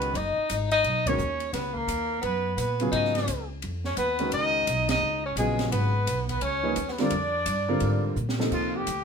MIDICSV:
0, 0, Header, 1, 7, 480
1, 0, Start_track
1, 0, Tempo, 349243
1, 191, Time_signature, 4, 2, 24, 8
1, 12425, End_track
2, 0, Start_track
2, 0, Title_t, "Trumpet"
2, 0, Program_c, 0, 56
2, 0, Note_on_c, 0, 71, 91
2, 233, Note_on_c, 0, 75, 100
2, 254, Note_off_c, 0, 71, 0
2, 764, Note_off_c, 0, 75, 0
2, 988, Note_on_c, 0, 75, 104
2, 1484, Note_on_c, 0, 73, 101
2, 1504, Note_off_c, 0, 75, 0
2, 2112, Note_off_c, 0, 73, 0
2, 2120, Note_on_c, 0, 71, 83
2, 2443, Note_on_c, 0, 70, 94
2, 2464, Note_off_c, 0, 71, 0
2, 3079, Note_off_c, 0, 70, 0
2, 3092, Note_on_c, 0, 71, 90
2, 3523, Note_off_c, 0, 71, 0
2, 3584, Note_on_c, 0, 71, 81
2, 4008, Note_off_c, 0, 71, 0
2, 4065, Note_on_c, 0, 75, 80
2, 4772, Note_off_c, 0, 75, 0
2, 5301, Note_on_c, 0, 73, 92
2, 5454, Note_off_c, 0, 73, 0
2, 5475, Note_on_c, 0, 71, 95
2, 5912, Note_off_c, 0, 71, 0
2, 5960, Note_on_c, 0, 75, 107
2, 6678, Note_off_c, 0, 75, 0
2, 6746, Note_on_c, 0, 75, 109
2, 7181, Note_off_c, 0, 75, 0
2, 7226, Note_on_c, 0, 73, 91
2, 7377, Note_off_c, 0, 73, 0
2, 7396, Note_on_c, 0, 68, 89
2, 7834, Note_off_c, 0, 68, 0
2, 7872, Note_on_c, 0, 71, 98
2, 8596, Note_off_c, 0, 71, 0
2, 8672, Note_on_c, 0, 71, 89
2, 8822, Note_off_c, 0, 71, 0
2, 8856, Note_on_c, 0, 73, 96
2, 9513, Note_on_c, 0, 71, 61
2, 9533, Note_off_c, 0, 73, 0
2, 9640, Note_on_c, 0, 74, 91
2, 9661, Note_off_c, 0, 71, 0
2, 11243, Note_off_c, 0, 74, 0
2, 11730, Note_on_c, 0, 65, 82
2, 12039, Note_on_c, 0, 67, 84
2, 12059, Note_off_c, 0, 65, 0
2, 12425, Note_off_c, 0, 67, 0
2, 12425, End_track
3, 0, Start_track
3, 0, Title_t, "Grand piano"
3, 0, Program_c, 1, 0
3, 0, Note_on_c, 1, 51, 65
3, 0, Note_on_c, 1, 56, 62
3, 0, Note_on_c, 1, 61, 62
3, 0, Note_on_c, 1, 66, 55
3, 0, Note_on_c, 1, 71, 65
3, 162, Note_off_c, 1, 56, 0
3, 163, Note_off_c, 1, 51, 0
3, 166, Note_off_c, 1, 61, 0
3, 169, Note_off_c, 1, 66, 0
3, 173, Note_off_c, 1, 71, 0
3, 1479, Note_on_c, 1, 51, 57
3, 1479, Note_on_c, 1, 61, 56
3, 1480, Note_on_c, 1, 56, 53
3, 1490, Note_on_c, 1, 66, 57
3, 1490, Note_on_c, 1, 70, 62
3, 1622, Note_off_c, 1, 51, 0
3, 1622, Note_off_c, 1, 61, 0
3, 1623, Note_off_c, 1, 56, 0
3, 1628, Note_off_c, 1, 66, 0
3, 1628, Note_off_c, 1, 70, 0
3, 3853, Note_on_c, 1, 49, 63
3, 3857, Note_on_c, 1, 54, 59
3, 3860, Note_on_c, 1, 59, 57
3, 3868, Note_on_c, 1, 65, 67
3, 3878, Note_on_c, 1, 68, 75
3, 4467, Note_off_c, 1, 49, 0
3, 4469, Note_off_c, 1, 54, 0
3, 4471, Note_off_c, 1, 59, 0
3, 4475, Note_off_c, 1, 65, 0
3, 4480, Note_off_c, 1, 68, 0
3, 5763, Note_on_c, 1, 51, 58
3, 5767, Note_on_c, 1, 61, 55
3, 5769, Note_on_c, 1, 56, 57
3, 5774, Note_on_c, 1, 66, 61
3, 5785, Note_on_c, 1, 70, 70
3, 6382, Note_off_c, 1, 51, 0
3, 6384, Note_off_c, 1, 61, 0
3, 6385, Note_off_c, 1, 56, 0
3, 6387, Note_off_c, 1, 66, 0
3, 6393, Note_off_c, 1, 70, 0
3, 7397, Note_on_c, 1, 49, 51
3, 7400, Note_on_c, 1, 54, 51
3, 7404, Note_on_c, 1, 59, 52
3, 7416, Note_on_c, 1, 65, 56
3, 7419, Note_on_c, 1, 68, 66
3, 8111, Note_off_c, 1, 49, 0
3, 8113, Note_off_c, 1, 54, 0
3, 8115, Note_off_c, 1, 59, 0
3, 8121, Note_off_c, 1, 65, 0
3, 8123, Note_off_c, 1, 68, 0
3, 9116, Note_on_c, 1, 63, 57
3, 9118, Note_on_c, 1, 53, 58
3, 9118, Note_on_c, 1, 58, 59
3, 9127, Note_on_c, 1, 71, 66
3, 9130, Note_on_c, 1, 68, 62
3, 9278, Note_off_c, 1, 63, 0
3, 9279, Note_off_c, 1, 53, 0
3, 9279, Note_off_c, 1, 58, 0
3, 9284, Note_off_c, 1, 71, 0
3, 9285, Note_off_c, 1, 68, 0
3, 9611, Note_on_c, 1, 50, 74
3, 9615, Note_on_c, 1, 60, 69
3, 9616, Note_on_c, 1, 55, 66
3, 9620, Note_on_c, 1, 70, 76
3, 9621, Note_on_c, 1, 65, 71
3, 9766, Note_off_c, 1, 50, 0
3, 9769, Note_off_c, 1, 55, 0
3, 9769, Note_off_c, 1, 60, 0
3, 9771, Note_off_c, 1, 70, 0
3, 9772, Note_off_c, 1, 65, 0
3, 10561, Note_on_c, 1, 50, 73
3, 10563, Note_on_c, 1, 55, 72
3, 10570, Note_on_c, 1, 60, 69
3, 10570, Note_on_c, 1, 65, 74
3, 10577, Note_on_c, 1, 70, 82
3, 11187, Note_off_c, 1, 50, 0
3, 11188, Note_off_c, 1, 55, 0
3, 11191, Note_off_c, 1, 60, 0
3, 11191, Note_off_c, 1, 65, 0
3, 11195, Note_off_c, 1, 70, 0
3, 11526, Note_on_c, 1, 53, 59
3, 11532, Note_on_c, 1, 58, 58
3, 11533, Note_on_c, 1, 63, 58
3, 11537, Note_on_c, 1, 48, 56
3, 11543, Note_on_c, 1, 69, 73
3, 12151, Note_off_c, 1, 53, 0
3, 12154, Note_off_c, 1, 58, 0
3, 12155, Note_off_c, 1, 63, 0
3, 12156, Note_off_c, 1, 48, 0
3, 12160, Note_off_c, 1, 69, 0
3, 12425, End_track
4, 0, Start_track
4, 0, Title_t, "Tenor saxophone"
4, 0, Program_c, 2, 66
4, 0, Note_on_c, 2, 59, 74
4, 198, Note_on_c, 2, 63, 86
4, 219, Note_off_c, 2, 59, 0
4, 973, Note_off_c, 2, 63, 0
4, 982, Note_on_c, 2, 63, 84
4, 1452, Note_on_c, 2, 61, 80
4, 1473, Note_off_c, 2, 63, 0
4, 2092, Note_off_c, 2, 61, 0
4, 2100, Note_on_c, 2, 59, 77
4, 2391, Note_on_c, 2, 58, 94
4, 2412, Note_off_c, 2, 59, 0
4, 3035, Note_off_c, 2, 58, 0
4, 3043, Note_on_c, 2, 59, 81
4, 3497, Note_off_c, 2, 59, 0
4, 3519, Note_on_c, 2, 59, 67
4, 3974, Note_off_c, 2, 59, 0
4, 4004, Note_on_c, 2, 63, 73
4, 4739, Note_off_c, 2, 63, 0
4, 5299, Note_on_c, 2, 61, 72
4, 5453, Note_off_c, 2, 61, 0
4, 5466, Note_on_c, 2, 59, 83
4, 5907, Note_off_c, 2, 59, 0
4, 5951, Note_on_c, 2, 63, 80
4, 6674, Note_off_c, 2, 63, 0
4, 6731, Note_on_c, 2, 63, 86
4, 7173, Note_off_c, 2, 63, 0
4, 7220, Note_on_c, 2, 61, 73
4, 7374, Note_off_c, 2, 61, 0
4, 7391, Note_on_c, 2, 56, 77
4, 7831, Note_off_c, 2, 56, 0
4, 7856, Note_on_c, 2, 59, 82
4, 8588, Note_off_c, 2, 59, 0
4, 8645, Note_on_c, 2, 59, 73
4, 8807, Note_off_c, 2, 59, 0
4, 8820, Note_on_c, 2, 61, 90
4, 9471, Note_on_c, 2, 59, 57
4, 9492, Note_off_c, 2, 61, 0
4, 9606, Note_on_c, 2, 62, 94
4, 9627, Note_off_c, 2, 59, 0
4, 11226, Note_off_c, 2, 62, 0
4, 12425, End_track
5, 0, Start_track
5, 0, Title_t, "Upright bass"
5, 0, Program_c, 3, 32
5, 0, Note_on_c, 3, 37, 84
5, 179, Note_off_c, 3, 37, 0
5, 192, Note_on_c, 3, 30, 90
5, 474, Note_off_c, 3, 30, 0
5, 686, Note_on_c, 3, 32, 72
5, 1142, Note_off_c, 3, 32, 0
5, 1153, Note_on_c, 3, 35, 70
5, 1614, Note_off_c, 3, 35, 0
5, 1624, Note_on_c, 3, 39, 91
5, 2089, Note_off_c, 3, 39, 0
5, 2104, Note_on_c, 3, 37, 85
5, 2568, Note_off_c, 3, 37, 0
5, 2576, Note_on_c, 3, 39, 78
5, 3043, Note_off_c, 3, 39, 0
5, 3066, Note_on_c, 3, 42, 78
5, 3528, Note_off_c, 3, 42, 0
5, 3535, Note_on_c, 3, 46, 86
5, 4002, Note_off_c, 3, 46, 0
5, 4017, Note_on_c, 3, 44, 80
5, 4482, Note_off_c, 3, 44, 0
5, 4506, Note_on_c, 3, 37, 74
5, 4967, Note_off_c, 3, 37, 0
5, 4998, Note_on_c, 3, 41, 72
5, 5453, Note_off_c, 3, 41, 0
5, 5459, Note_on_c, 3, 39, 90
5, 5923, Note_off_c, 3, 39, 0
5, 5942, Note_on_c, 3, 37, 83
5, 6404, Note_off_c, 3, 37, 0
5, 6422, Note_on_c, 3, 35, 84
5, 6884, Note_off_c, 3, 35, 0
5, 6894, Note_on_c, 3, 37, 80
5, 7355, Note_off_c, 3, 37, 0
5, 7364, Note_on_c, 3, 34, 91
5, 7836, Note_off_c, 3, 34, 0
5, 7855, Note_on_c, 3, 32, 91
5, 8323, Note_off_c, 3, 32, 0
5, 8340, Note_on_c, 3, 35, 85
5, 8806, Note_off_c, 3, 35, 0
5, 8821, Note_on_c, 3, 37, 73
5, 9287, Note_off_c, 3, 37, 0
5, 9296, Note_on_c, 3, 39, 86
5, 9765, Note_off_c, 3, 39, 0
5, 9776, Note_on_c, 3, 41, 83
5, 10245, Note_off_c, 3, 41, 0
5, 10251, Note_on_c, 3, 43, 86
5, 10724, Note_off_c, 3, 43, 0
5, 10738, Note_on_c, 3, 44, 77
5, 11208, Note_off_c, 3, 44, 0
5, 11219, Note_on_c, 3, 46, 88
5, 11689, Note_off_c, 3, 46, 0
5, 11702, Note_on_c, 3, 39, 83
5, 12172, Note_off_c, 3, 39, 0
5, 12190, Note_on_c, 3, 38, 83
5, 12425, Note_off_c, 3, 38, 0
5, 12425, End_track
6, 0, Start_track
6, 0, Title_t, "Muted upright bass strokes"
6, 511, Note_on_c, 9, 29, 36
6, 648, Note_off_c, 9, 29, 0
6, 12425, End_track
7, 0, Start_track
7, 0, Title_t, "Drums"
7, 21, Note_on_c, 9, 51, 42
7, 158, Note_off_c, 9, 51, 0
7, 208, Note_on_c, 9, 51, 56
7, 345, Note_off_c, 9, 51, 0
7, 680, Note_on_c, 9, 44, 60
7, 680, Note_on_c, 9, 51, 69
7, 818, Note_off_c, 9, 44, 0
7, 818, Note_off_c, 9, 51, 0
7, 980, Note_on_c, 9, 51, 46
7, 1118, Note_off_c, 9, 51, 0
7, 1158, Note_on_c, 9, 51, 51
7, 1296, Note_off_c, 9, 51, 0
7, 1459, Note_on_c, 9, 36, 84
7, 1465, Note_on_c, 9, 51, 73
7, 1597, Note_off_c, 9, 36, 0
7, 1602, Note_off_c, 9, 51, 0
7, 1629, Note_on_c, 9, 44, 44
7, 1767, Note_off_c, 9, 44, 0
7, 1926, Note_on_c, 9, 51, 41
7, 2064, Note_off_c, 9, 51, 0
7, 2109, Note_on_c, 9, 51, 66
7, 2112, Note_on_c, 9, 38, 38
7, 2247, Note_off_c, 9, 51, 0
7, 2250, Note_off_c, 9, 38, 0
7, 2413, Note_on_c, 9, 36, 52
7, 2550, Note_off_c, 9, 36, 0
7, 2589, Note_on_c, 9, 44, 58
7, 2589, Note_on_c, 9, 51, 63
7, 2727, Note_off_c, 9, 44, 0
7, 2727, Note_off_c, 9, 51, 0
7, 3059, Note_on_c, 9, 51, 50
7, 3197, Note_off_c, 9, 51, 0
7, 3544, Note_on_c, 9, 44, 45
7, 3544, Note_on_c, 9, 51, 57
7, 3681, Note_off_c, 9, 44, 0
7, 3681, Note_off_c, 9, 51, 0
7, 3843, Note_on_c, 9, 51, 44
7, 3980, Note_off_c, 9, 51, 0
7, 4020, Note_on_c, 9, 51, 60
7, 4158, Note_off_c, 9, 51, 0
7, 4187, Note_on_c, 9, 38, 25
7, 4324, Note_off_c, 9, 38, 0
7, 4327, Note_on_c, 9, 51, 42
7, 4353, Note_on_c, 9, 38, 46
7, 4465, Note_off_c, 9, 51, 0
7, 4491, Note_off_c, 9, 38, 0
7, 4502, Note_on_c, 9, 44, 65
7, 4502, Note_on_c, 9, 51, 63
7, 4640, Note_off_c, 9, 44, 0
7, 4640, Note_off_c, 9, 51, 0
7, 4978, Note_on_c, 9, 51, 57
7, 5115, Note_off_c, 9, 51, 0
7, 5284, Note_on_c, 9, 38, 41
7, 5421, Note_off_c, 9, 38, 0
7, 5453, Note_on_c, 9, 44, 58
7, 5453, Note_on_c, 9, 51, 64
7, 5590, Note_off_c, 9, 44, 0
7, 5590, Note_off_c, 9, 51, 0
7, 5754, Note_on_c, 9, 51, 44
7, 5891, Note_off_c, 9, 51, 0
7, 5933, Note_on_c, 9, 51, 65
7, 6070, Note_off_c, 9, 51, 0
7, 6420, Note_on_c, 9, 44, 53
7, 6420, Note_on_c, 9, 51, 72
7, 6558, Note_off_c, 9, 44, 0
7, 6558, Note_off_c, 9, 51, 0
7, 6716, Note_on_c, 9, 51, 63
7, 6719, Note_on_c, 9, 38, 74
7, 6854, Note_off_c, 9, 51, 0
7, 6857, Note_off_c, 9, 38, 0
7, 7376, Note_on_c, 9, 44, 57
7, 7376, Note_on_c, 9, 51, 64
7, 7513, Note_off_c, 9, 44, 0
7, 7513, Note_off_c, 9, 51, 0
7, 7682, Note_on_c, 9, 51, 40
7, 7684, Note_on_c, 9, 38, 56
7, 7819, Note_off_c, 9, 51, 0
7, 7822, Note_off_c, 9, 38, 0
7, 7864, Note_on_c, 9, 51, 69
7, 8001, Note_off_c, 9, 51, 0
7, 8345, Note_on_c, 9, 44, 55
7, 8345, Note_on_c, 9, 51, 70
7, 8483, Note_off_c, 9, 44, 0
7, 8483, Note_off_c, 9, 51, 0
7, 8643, Note_on_c, 9, 36, 47
7, 8646, Note_on_c, 9, 51, 47
7, 8780, Note_off_c, 9, 36, 0
7, 8783, Note_off_c, 9, 51, 0
7, 8812, Note_on_c, 9, 51, 60
7, 8950, Note_off_c, 9, 51, 0
7, 9288, Note_on_c, 9, 44, 51
7, 9288, Note_on_c, 9, 51, 59
7, 9426, Note_off_c, 9, 44, 0
7, 9426, Note_off_c, 9, 51, 0
7, 9455, Note_on_c, 9, 38, 29
7, 9592, Note_off_c, 9, 38, 0
7, 9597, Note_on_c, 9, 51, 41
7, 9602, Note_on_c, 9, 38, 45
7, 9734, Note_off_c, 9, 51, 0
7, 9739, Note_off_c, 9, 38, 0
7, 9764, Note_on_c, 9, 51, 66
7, 9901, Note_off_c, 9, 51, 0
7, 10250, Note_on_c, 9, 44, 58
7, 10250, Note_on_c, 9, 51, 70
7, 10387, Note_off_c, 9, 44, 0
7, 10387, Note_off_c, 9, 51, 0
7, 10723, Note_on_c, 9, 51, 53
7, 10861, Note_off_c, 9, 51, 0
7, 11219, Note_on_c, 9, 44, 45
7, 11357, Note_off_c, 9, 44, 0
7, 11392, Note_on_c, 9, 38, 61
7, 11529, Note_off_c, 9, 38, 0
7, 11546, Note_on_c, 9, 38, 73
7, 11683, Note_off_c, 9, 38, 0
7, 11705, Note_on_c, 9, 36, 66
7, 11706, Note_on_c, 9, 49, 70
7, 11842, Note_off_c, 9, 36, 0
7, 11843, Note_off_c, 9, 49, 0
7, 12187, Note_on_c, 9, 44, 59
7, 12187, Note_on_c, 9, 51, 62
7, 12324, Note_off_c, 9, 44, 0
7, 12324, Note_off_c, 9, 51, 0
7, 12425, End_track
0, 0, End_of_file